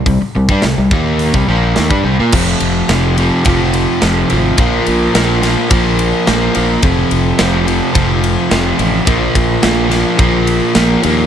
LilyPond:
<<
  \new Staff \with { instrumentName = "Overdriven electric guitar" } { \clef bass \time 4/4 \key f \dorian \tempo 4 = 107 <c g>16 r16 <c g>16 <g d'>16 <c g>16 <c g>16 <ees bes ees'>8. <c g>16 <bes, f bes>8 <ees bes>16 <g d'>16 <c g>16 <bes f'>16 | <f, c f>4 <f, c f>8 <f, c f>8 <f, c f>4 <f, c f>8 <f, c f>8 | <bes, f bes>4 <bes, f bes>8 <bes, f bes>8 <bes, f bes>4 <bes, f bes>8 <bes, f bes>8 | <f, c f>4 <f, c f>8 <f, c f>8 <f, c f>4 <f, c f>8 <f, c f>8 |
<bes, f bes>4 <bes, f bes>8 <bes, f bes>8 <bes, f bes>4 <bes, f bes>8 <bes, f bes>8 | }
  \new Staff \with { instrumentName = "Fingered electric bass" } { \clef bass \time 4/4 \key f \dorian c,16 r16 c,16 g,16 c,16 c,16 ees,8. c,16 bes,,8 ees,16 g,16 c,16 bes,16 | f,,8 f,,8 f,,4 f,,4 f,,8 aes,,8 | bes,,8 bes,,8 bes,,4 bes,,4 bes,,8 bes,,8 | f,,8 f,,8 f,,4 f,,4 f,,8 a,,8 |
bes,,8 bes,,8 bes,,4 bes,,4 bes,,8 ees,8 | }
  \new DrumStaff \with { instrumentName = "Drums" } \drummode { \time 4/4 <hho bd>8. bd16 <hho sn>8 bd8 hho16 bd8. <hho sn>16 bd8. | <cymc bd>8 cymr8 <cymr sn>8 cymr8 <bd cymr>8 cymr8 <cymr sn>8 cymr8 | <bd cymr>8 cymr8 <cymr sn>8 <cymr sn>8 <bd cymr>8 cymr8 <cymr sn>8 cymr8 | <bd cymr>8 cymr8 <cymr sn>8 cymr8 <bd cymr>8 cymr8 <cymr sn>8 cymr8 |
<bd cymr>8 <bd cymr>8 <cymr sn>8 <cymr sn>8 <bd cymr>8 cymr8 <cymr sn>8 cymr8 | }
>>